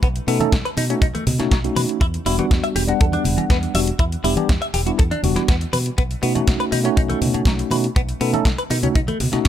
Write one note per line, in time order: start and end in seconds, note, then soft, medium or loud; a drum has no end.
0.03 0.18 B1 loud
0.03 0.07 B3 medium
0.03 kick loud
0.03 closed hi-hat medium
0.16 closed hi-hat soft
0.27 0.39 B2 loud
0.27 0.38 A3 medium
0.27 0.37 B3 medium
0.27 0.38 C#4 medium
0.27 0.38 D#4 medium
0.27 0.39 A4 loud
0.27 open hi-hat loud
0.27 muted conga soft
0.39 0.46 B2 loud
0.39 0.54 A3 loud
0.39 0.54 C#4 medium
0.39 0.54 D#4 medium
0.39 0.54 A4 loud
0.39 muted fingered electric bass stroke soft
0.39 closed hi-hat soft
0.39 high conga medium
0.52 0.60 B1 loud
0.52 kick loud
0.52 snare loud
0.52 closed hi-hat medium
0.65 0.69 B4 medium
0.65 closed hi-hat soft
0.77 0.93 B2 medium
0.77 0.84 D#4 loud
0.77 open hi-hat loud
0.77 muted conga medium
0.89 1.04 A3 medium
0.89 1.04 C#4 medium
0.89 0.94 C#4 medium
0.89 1.04 D#4 medium
0.89 1.04 F#4 loud
0.89 closed hi-hat soft
1.02 1.10 B1 loud
1.02 1.06 D#4 medium
1.02 kick loud
1.02 closed hi-hat medium
1.15 1.24 A3 loud
1.15 muted fingered electric bass stroke soft
1.15 closed hi-hat soft
1.15 high conga medium
1.27 1.39 B2 loud
1.27 open hi-hat loud
1.27 low conga medium
1.39 1.46 B2 loud
1.39 1.53 A3 medium
1.39 1.53 C#4 medium
1.39 1.54 D#4 medium
1.39 1.54 F#4 loud
1.39 muted fingered electric bass stroke soft
1.39 snare soft
1.39 closed hi-hat soft
1.51 1.67 B1 medium
1.51 1.58 F#3 medium
1.51 kick loud
1.51 snare loud
1.51 closed hi-hat medium
1.64 2.00 A3 medium
1.64 2.00 C#4 medium
1.64 2.00 D#4 medium
1.64 2.00 F#4 medium
1.64 closed hi-hat soft
1.76 1.84 B2 loud
1.76 1.80 B4 medium
1.76 open hi-hat loud
1.76 high conga loud
1.89 closed hi-hat soft
2.01 2.17 E2 loud
2.01 2.05 E4 medium
2.01 kick loud
2.01 closed hi-hat medium
2.14 closed hi-hat soft
2.25 2.38 E1 loud
2.25 2.35 G3 medium
2.25 2.35 B3 medium
2.25 2.36 D4 medium
2.25 2.36 E4 medium
2.25 2.36 F#4 medium
2.25 open hi-hat loud
2.25 muted conga soft
2.38 2.45 E3 loud
2.38 2.85 G3 medium
2.38 2.85 B3 medium
2.38 2.85 D4 medium
2.38 2.85 F#4 medium
2.38 muted fingered electric bass stroke soft
2.38 closed hi-hat soft
2.38 high conga loud
2.51 2.59 E2 loud
2.51 kick loud
2.51 snare loud
2.51 closed hi-hat medium
2.64 2.67 E5 medium
2.64 closed hi-hat soft
2.75 2.91 E1 medium
2.75 2.82 G4 loud
2.75 open hi-hat loud
2.75 muted conga medium
2.87 3.71 G3 loud
2.87 3.72 B3 medium
2.87 3.72 D4 medium
2.87 2.92 F#4 medium
2.87 3.72 F#5 loud
2.87 closed hi-hat soft
3.01 3.16 E2 medium
3.01 3.04 A4 medium
3.01 kick loud
3.01 closed hi-hat medium
3.13 3.22 D4 loud
3.13 closed hi-hat soft
3.13 high conga medium
3.24 3.37 E1 medium
3.24 open hi-hat loud
3.24 low conga medium
3.37 3.44 E3 loud
3.37 muted fingered electric bass stroke soft
3.37 closed hi-hat soft
3.37 muted conga soft
3.50 3.65 E2 medium
3.50 3.56 B3 medium
3.50 kick loud
3.50 snare loud
3.50 closed hi-hat medium
3.63 closed hi-hat soft
3.74 3.90 E1 medium
3.74 3.89 G3 medium
3.74 3.89 B3 medium
3.74 3.89 D4 medium
3.74 3.89 F#4 medium
3.74 3.79 E5 medium
3.74 open hi-hat loud
3.74 muted conga soft
3.74 high conga loud
3.87 closed hi-hat soft
3.99 4.15 E2 loud
3.99 4.03 E4 medium
3.99 kick loud
3.99 closed hi-hat medium
4.12 closed hi-hat soft
4.24 4.36 E1 loud
4.24 4.35 G3 medium
4.24 4.35 B3 medium
4.24 4.35 D4 medium
4.24 4.34 E4 medium
4.24 4.35 G4 loud
4.24 open hi-hat loud
4.24 muted conga soft
4.36 4.43 E3 loud
4.36 4.51 G3 loud
4.36 4.51 B3 medium
4.36 4.51 D4 medium
4.36 4.51 G4 loud
4.36 muted fingered electric bass stroke soft
4.36 closed hi-hat soft
4.36 high conga medium
4.49 4.57 E2 loud
4.49 kick loud
4.49 snare loud
4.49 closed hi-hat medium
4.62 4.65 E5 medium
4.62 closed hi-hat soft
4.74 4.89 E1 medium
4.74 4.80 G4 loud
4.74 open hi-hat loud
4.74 muted conga medium
4.86 5.00 G3 medium
4.86 5.00 B3 medium
4.86 5.01 D4 medium
4.86 5.01 E4 loud
4.86 4.90 F#4 medium
4.86 closed hi-hat soft
4.99 5.11 E2 medium
4.99 5.02 A4 medium
4.99 kick loud
4.99 closed hi-hat medium
5.11 5.20 D4 loud
5.11 muted fingered electric bass stroke soft
5.11 closed hi-hat soft
5.11 high conga medium
5.23 5.35 E1 medium
5.23 5.46 G3 medium
5.23 5.46 B3 medium
5.23 5.46 D4 medium
5.23 5.47 F#4 loud
5.23 open hi-hat loud
5.23 low conga medium
5.36 5.42 E3 loud
5.36 muted fingered electric bass stroke soft
5.36 snare soft
5.36 closed hi-hat soft
5.48 5.64 E2 medium
5.48 5.55 B3 medium
5.48 kick loud
5.48 snare loud
5.48 closed hi-hat medium
5.61 closed hi-hat soft
5.73 5.89 B2 medium
5.73 5.77 B4 medium
5.73 open hi-hat loud
5.73 high conga medium
5.86 closed hi-hat soft
5.98 6.14 B1 loud
5.98 6.02 B3 medium
5.98 kick loud
5.98 closed hi-hat medium
6.11 closed hi-hat soft
6.22 6.35 B2 loud
6.22 6.32 A3 medium
6.22 6.32 B3 medium
6.22 6.32 C#4 medium
6.22 6.32 D#4 medium
6.22 6.33 F#4 medium
6.22 open hi-hat loud
6.22 muted conga soft
6.35 6.41 B2 loud
6.35 6.82 A3 medium
6.35 6.82 C#4 medium
6.35 6.82 D#4 medium
6.35 6.82 F#4 medium
6.35 muted fingered electric bass stroke soft
6.35 closed hi-hat soft
6.35 high conga medium
6.47 6.55 B1 medium
6.47 kick loud
6.47 snare loud
6.47 closed hi-hat medium
6.60 6.64 B4 medium
6.60 closed hi-hat soft
6.72 6.88 B2 medium
6.72 6.79 D#4 loud
6.72 open hi-hat loud
6.72 muted conga medium
6.84 7.68 A3 loud
6.84 7.68 C#4 medium
6.84 6.89 C#4 medium
6.84 7.69 D#4 medium
6.84 7.69 F#4 loud
6.84 closed hi-hat soft
6.97 7.13 B1 medium
6.97 7.01 D#4 medium
6.97 kick loud
6.97 closed hi-hat medium
7.09 7.19 A3 loud
7.09 closed hi-hat soft
7.09 high conga medium
7.22 7.34 B2 medium
7.22 open hi-hat loud
7.22 low conga medium
7.34 7.40 B2 loud
7.34 muted fingered electric bass stroke soft
7.34 closed hi-hat soft
7.34 muted conga medium
7.45 7.62 B1 medium
7.45 7.53 F#3 medium
7.45 kick loud
7.45 snare loud
7.45 closed hi-hat medium
7.59 closed hi-hat soft
7.71 7.87 B2 medium
7.71 7.85 A3 medium
7.71 7.86 C#4 medium
7.71 7.86 D#4 medium
7.71 7.86 F#4 medium
7.71 7.75 B4 medium
7.71 open hi-hat loud
7.71 muted conga medium
7.71 high conga medium
7.84 closed hi-hat soft
7.96 8.12 B1 loud
7.96 8.00 B3 medium
7.96 kick loud
7.96 closed hi-hat medium
8.09 closed hi-hat soft
8.21 8.33 B2 loud
8.21 8.32 A3 medium
8.21 8.30 B3 medium
8.21 8.32 C#4 medium
8.21 8.32 D#4 medium
8.21 8.32 A4 loud
8.21 open hi-hat loud
8.21 muted conga soft
8.33 8.40 B2 loud
8.33 8.47 A3 loud
8.33 8.47 C#4 loud
8.33 8.48 D#4 medium
8.33 8.48 A4 loud
8.33 muted fingered electric bass stroke soft
8.33 closed hi-hat soft
8.33 high conga medium
8.45 8.53 B1 medium
8.45 kick loud
8.45 snare loud
8.45 closed hi-hat medium
8.58 8.62 B4 medium
8.58 closed hi-hat soft
8.70 8.86 B2 medium
8.70 8.77 D#4 loud
8.70 open hi-hat loud
8.70 muted conga medium
8.83 8.97 A3 medium
8.83 8.97 C#4 medium
8.83 8.87 C#4 medium
8.83 8.97 D#4 medium
8.83 8.97 F#4 loud
8.83 closed hi-hat soft
8.83 low conga medium
8.95 9.07 B1 medium
8.95 8.99 D#4 medium
8.95 kick loud
8.95 closed hi-hat medium
9.08 9.17 A3 loud
9.08 muted fingered electric bass stroke soft
9.08 closed hi-hat soft
9.08 high conga medium
9.20 9.28 B2 medium
9.20 open hi-hat loud
9.20 low conga medium
9.32 9.39 B2 loud
9.32 9.46 A3 medium
9.32 9.47 C#4 medium
9.32 9.47 D#4 medium
9.32 9.47 F#4 loud
9.32 muted fingered electric bass stroke soft
9.32 snare soft
9.32 closed hi-hat soft
9.45 9.48 F#3 medium
9.45 closed hi-hat medium